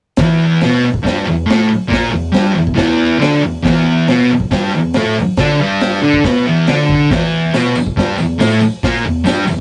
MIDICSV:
0, 0, Header, 1, 4, 480
1, 0, Start_track
1, 0, Tempo, 431344
1, 208, Time_signature, 4, 2, 24, 8
1, 10687, End_track
2, 0, Start_track
2, 0, Title_t, "Distorted electric guitar"
2, 0, Program_c, 0, 30
2, 208, Note_on_c, 0, 40, 85
2, 228, Note_on_c, 0, 52, 98
2, 683, Note_off_c, 0, 40, 0
2, 693, Note_off_c, 0, 52, 0
2, 697, Note_on_c, 0, 47, 82
2, 710, Note_on_c, 0, 59, 100
2, 928, Note_off_c, 0, 47, 0
2, 934, Note_off_c, 0, 59, 0
2, 1142, Note_on_c, 0, 43, 87
2, 1159, Note_on_c, 0, 55, 103
2, 1391, Note_off_c, 0, 43, 0
2, 1400, Note_off_c, 0, 55, 0
2, 1403, Note_on_c, 0, 40, 65
2, 1601, Note_off_c, 0, 40, 0
2, 1623, Note_on_c, 0, 45, 79
2, 1624, Note_on_c, 0, 57, 91
2, 1872, Note_off_c, 0, 45, 0
2, 1873, Note_off_c, 0, 57, 0
2, 2092, Note_on_c, 0, 46, 88
2, 2100, Note_on_c, 0, 58, 98
2, 2336, Note_on_c, 0, 40, 71
2, 2347, Note_off_c, 0, 46, 0
2, 2351, Note_off_c, 0, 58, 0
2, 2548, Note_off_c, 0, 40, 0
2, 2584, Note_on_c, 0, 43, 91
2, 2591, Note_on_c, 0, 55, 94
2, 2816, Note_off_c, 0, 43, 0
2, 2821, Note_on_c, 0, 40, 73
2, 2837, Note_off_c, 0, 55, 0
2, 3031, Note_off_c, 0, 40, 0
2, 3053, Note_on_c, 0, 40, 76
2, 3070, Note_on_c, 0, 52, 99
2, 3541, Note_on_c, 0, 50, 75
2, 3548, Note_off_c, 0, 40, 0
2, 3557, Note_off_c, 0, 52, 0
2, 3562, Note_on_c, 0, 62, 100
2, 3792, Note_off_c, 0, 50, 0
2, 3802, Note_off_c, 0, 62, 0
2, 3810, Note_on_c, 0, 40, 63
2, 4006, Note_off_c, 0, 40, 0
2, 4045, Note_on_c, 0, 40, 82
2, 4058, Note_on_c, 0, 52, 90
2, 4524, Note_off_c, 0, 40, 0
2, 4530, Note_off_c, 0, 52, 0
2, 4547, Note_on_c, 0, 47, 76
2, 4555, Note_on_c, 0, 59, 87
2, 4774, Note_off_c, 0, 47, 0
2, 4778, Note_off_c, 0, 59, 0
2, 5023, Note_on_c, 0, 43, 82
2, 5030, Note_on_c, 0, 55, 102
2, 5252, Note_off_c, 0, 43, 0
2, 5256, Note_off_c, 0, 55, 0
2, 5279, Note_on_c, 0, 40, 68
2, 5459, Note_off_c, 0, 40, 0
2, 5515, Note_on_c, 0, 45, 90
2, 5516, Note_on_c, 0, 57, 94
2, 5738, Note_off_c, 0, 45, 0
2, 5738, Note_off_c, 0, 57, 0
2, 5992, Note_on_c, 0, 50, 96
2, 6009, Note_on_c, 0, 62, 96
2, 6216, Note_off_c, 0, 50, 0
2, 6224, Note_off_c, 0, 62, 0
2, 6232, Note_on_c, 0, 43, 85
2, 6240, Note_on_c, 0, 55, 101
2, 6695, Note_off_c, 0, 43, 0
2, 6699, Note_off_c, 0, 55, 0
2, 6701, Note_on_c, 0, 50, 92
2, 6705, Note_on_c, 0, 62, 100
2, 6929, Note_off_c, 0, 50, 0
2, 6931, Note_off_c, 0, 62, 0
2, 6950, Note_on_c, 0, 47, 83
2, 6963, Note_on_c, 0, 59, 98
2, 7174, Note_off_c, 0, 47, 0
2, 7180, Note_off_c, 0, 59, 0
2, 7192, Note_on_c, 0, 40, 77
2, 7200, Note_on_c, 0, 52, 94
2, 7414, Note_off_c, 0, 40, 0
2, 7419, Note_off_c, 0, 52, 0
2, 7423, Note_on_c, 0, 50, 90
2, 7436, Note_on_c, 0, 62, 94
2, 7889, Note_off_c, 0, 50, 0
2, 7896, Note_off_c, 0, 62, 0
2, 7908, Note_on_c, 0, 40, 79
2, 7928, Note_on_c, 0, 52, 104
2, 8372, Note_off_c, 0, 40, 0
2, 8381, Note_off_c, 0, 52, 0
2, 8389, Note_on_c, 0, 47, 83
2, 8398, Note_on_c, 0, 59, 94
2, 8612, Note_off_c, 0, 47, 0
2, 8617, Note_off_c, 0, 59, 0
2, 8866, Note_on_c, 0, 43, 81
2, 8872, Note_on_c, 0, 55, 91
2, 9091, Note_off_c, 0, 43, 0
2, 9094, Note_off_c, 0, 55, 0
2, 9096, Note_on_c, 0, 40, 67
2, 9285, Note_off_c, 0, 40, 0
2, 9333, Note_on_c, 0, 45, 83
2, 9341, Note_on_c, 0, 57, 90
2, 9564, Note_off_c, 0, 45, 0
2, 9568, Note_off_c, 0, 57, 0
2, 9835, Note_on_c, 0, 46, 88
2, 9839, Note_on_c, 0, 58, 103
2, 10055, Note_off_c, 0, 46, 0
2, 10058, Note_off_c, 0, 58, 0
2, 10066, Note_on_c, 0, 40, 70
2, 10250, Note_off_c, 0, 40, 0
2, 10285, Note_on_c, 0, 43, 89
2, 10305, Note_on_c, 0, 55, 97
2, 10521, Note_off_c, 0, 43, 0
2, 10531, Note_off_c, 0, 55, 0
2, 10534, Note_on_c, 0, 40, 69
2, 10687, Note_off_c, 0, 40, 0
2, 10687, End_track
3, 0, Start_track
3, 0, Title_t, "Muted distorted electric guitar strokes"
3, 932, Note_on_c, 9, 29, 58
3, 1043, Note_off_c, 9, 29, 0
3, 1862, Note_on_c, 9, 29, 54
3, 1974, Note_off_c, 9, 29, 0
3, 4800, Note_on_c, 9, 29, 56
3, 4911, Note_off_c, 9, 29, 0
3, 5774, Note_on_c, 9, 29, 61
3, 5885, Note_off_c, 9, 29, 0
3, 8637, Note_on_c, 9, 29, 60
3, 8749, Note_off_c, 9, 29, 0
3, 9579, Note_on_c, 9, 29, 58
3, 9690, Note_off_c, 9, 29, 0
3, 10687, End_track
4, 0, Start_track
4, 0, Title_t, "Drums"
4, 184, Note_on_c, 9, 46, 53
4, 193, Note_on_c, 9, 38, 113
4, 199, Note_on_c, 9, 36, 100
4, 295, Note_off_c, 9, 46, 0
4, 304, Note_off_c, 9, 38, 0
4, 310, Note_off_c, 9, 36, 0
4, 678, Note_on_c, 9, 46, 56
4, 687, Note_on_c, 9, 38, 104
4, 789, Note_off_c, 9, 46, 0
4, 798, Note_off_c, 9, 38, 0
4, 1046, Note_on_c, 9, 36, 76
4, 1157, Note_off_c, 9, 36, 0
4, 1167, Note_on_c, 9, 36, 85
4, 1177, Note_on_c, 9, 46, 54
4, 1186, Note_on_c, 9, 38, 104
4, 1279, Note_off_c, 9, 36, 0
4, 1289, Note_off_c, 9, 46, 0
4, 1298, Note_off_c, 9, 38, 0
4, 1667, Note_on_c, 9, 46, 60
4, 1676, Note_on_c, 9, 38, 111
4, 1778, Note_off_c, 9, 46, 0
4, 1787, Note_off_c, 9, 38, 0
4, 2131, Note_on_c, 9, 36, 109
4, 2142, Note_on_c, 9, 46, 52
4, 2151, Note_on_c, 9, 38, 104
4, 2242, Note_off_c, 9, 36, 0
4, 2254, Note_off_c, 9, 46, 0
4, 2262, Note_off_c, 9, 38, 0
4, 2602, Note_on_c, 9, 46, 50
4, 2611, Note_on_c, 9, 38, 103
4, 2713, Note_off_c, 9, 46, 0
4, 2722, Note_off_c, 9, 38, 0
4, 2971, Note_on_c, 9, 36, 81
4, 3082, Note_off_c, 9, 36, 0
4, 3082, Note_on_c, 9, 46, 48
4, 3087, Note_on_c, 9, 36, 87
4, 3091, Note_on_c, 9, 38, 101
4, 3193, Note_off_c, 9, 46, 0
4, 3199, Note_off_c, 9, 36, 0
4, 3202, Note_off_c, 9, 38, 0
4, 3579, Note_on_c, 9, 46, 56
4, 3588, Note_on_c, 9, 38, 109
4, 3690, Note_off_c, 9, 46, 0
4, 3699, Note_off_c, 9, 38, 0
4, 4056, Note_on_c, 9, 36, 104
4, 4059, Note_on_c, 9, 46, 52
4, 4068, Note_on_c, 9, 38, 101
4, 4167, Note_off_c, 9, 36, 0
4, 4171, Note_off_c, 9, 46, 0
4, 4179, Note_off_c, 9, 38, 0
4, 4539, Note_on_c, 9, 46, 55
4, 4548, Note_on_c, 9, 38, 99
4, 4650, Note_off_c, 9, 46, 0
4, 4659, Note_off_c, 9, 38, 0
4, 4896, Note_on_c, 9, 36, 77
4, 5007, Note_off_c, 9, 36, 0
4, 5019, Note_on_c, 9, 36, 91
4, 5021, Note_on_c, 9, 46, 55
4, 5029, Note_on_c, 9, 38, 103
4, 5130, Note_off_c, 9, 36, 0
4, 5132, Note_off_c, 9, 46, 0
4, 5141, Note_off_c, 9, 38, 0
4, 5493, Note_on_c, 9, 46, 58
4, 5502, Note_on_c, 9, 38, 110
4, 5604, Note_off_c, 9, 46, 0
4, 5613, Note_off_c, 9, 38, 0
4, 5972, Note_on_c, 9, 46, 56
4, 5980, Note_on_c, 9, 36, 99
4, 5981, Note_on_c, 9, 38, 111
4, 6083, Note_off_c, 9, 46, 0
4, 6091, Note_off_c, 9, 36, 0
4, 6092, Note_off_c, 9, 38, 0
4, 6462, Note_on_c, 9, 46, 56
4, 6471, Note_on_c, 9, 38, 108
4, 6574, Note_off_c, 9, 46, 0
4, 6583, Note_off_c, 9, 38, 0
4, 6825, Note_on_c, 9, 36, 83
4, 6936, Note_off_c, 9, 36, 0
4, 6945, Note_on_c, 9, 36, 98
4, 6945, Note_on_c, 9, 46, 56
4, 6954, Note_on_c, 9, 38, 105
4, 7056, Note_off_c, 9, 36, 0
4, 7056, Note_off_c, 9, 46, 0
4, 7065, Note_off_c, 9, 38, 0
4, 7423, Note_on_c, 9, 46, 57
4, 7432, Note_on_c, 9, 38, 121
4, 7534, Note_off_c, 9, 46, 0
4, 7543, Note_off_c, 9, 38, 0
4, 7667, Note_on_c, 9, 36, 80
4, 7778, Note_off_c, 9, 36, 0
4, 7909, Note_on_c, 9, 36, 113
4, 7911, Note_on_c, 9, 46, 52
4, 7920, Note_on_c, 9, 38, 114
4, 8020, Note_off_c, 9, 36, 0
4, 8022, Note_off_c, 9, 46, 0
4, 8031, Note_off_c, 9, 38, 0
4, 8385, Note_on_c, 9, 46, 54
4, 8394, Note_on_c, 9, 38, 104
4, 8394, Note_on_c, 9, 54, 99
4, 8496, Note_off_c, 9, 46, 0
4, 8505, Note_off_c, 9, 38, 0
4, 8505, Note_off_c, 9, 54, 0
4, 8514, Note_on_c, 9, 54, 24
4, 8626, Note_off_c, 9, 54, 0
4, 8627, Note_on_c, 9, 54, 74
4, 8739, Note_off_c, 9, 54, 0
4, 8752, Note_on_c, 9, 36, 87
4, 8863, Note_off_c, 9, 36, 0
4, 8872, Note_on_c, 9, 36, 86
4, 8883, Note_on_c, 9, 46, 50
4, 8892, Note_on_c, 9, 38, 107
4, 8983, Note_off_c, 9, 36, 0
4, 8994, Note_off_c, 9, 46, 0
4, 9003, Note_off_c, 9, 38, 0
4, 9100, Note_on_c, 9, 54, 70
4, 9211, Note_off_c, 9, 54, 0
4, 9350, Note_on_c, 9, 46, 60
4, 9350, Note_on_c, 9, 54, 99
4, 9359, Note_on_c, 9, 38, 113
4, 9461, Note_off_c, 9, 46, 0
4, 9461, Note_off_c, 9, 54, 0
4, 9461, Note_on_c, 9, 54, 76
4, 9470, Note_off_c, 9, 38, 0
4, 9572, Note_off_c, 9, 54, 0
4, 9582, Note_on_c, 9, 54, 63
4, 9693, Note_off_c, 9, 54, 0
4, 9711, Note_on_c, 9, 54, 28
4, 9822, Note_off_c, 9, 54, 0
4, 9828, Note_on_c, 9, 36, 105
4, 9833, Note_on_c, 9, 46, 57
4, 9842, Note_on_c, 9, 38, 107
4, 9940, Note_off_c, 9, 36, 0
4, 9944, Note_off_c, 9, 46, 0
4, 9953, Note_off_c, 9, 38, 0
4, 10299, Note_on_c, 9, 54, 92
4, 10308, Note_on_c, 9, 46, 58
4, 10317, Note_on_c, 9, 38, 113
4, 10410, Note_off_c, 9, 54, 0
4, 10419, Note_off_c, 9, 46, 0
4, 10428, Note_off_c, 9, 38, 0
4, 10430, Note_on_c, 9, 54, 23
4, 10541, Note_off_c, 9, 54, 0
4, 10543, Note_on_c, 9, 54, 70
4, 10654, Note_off_c, 9, 54, 0
4, 10687, End_track
0, 0, End_of_file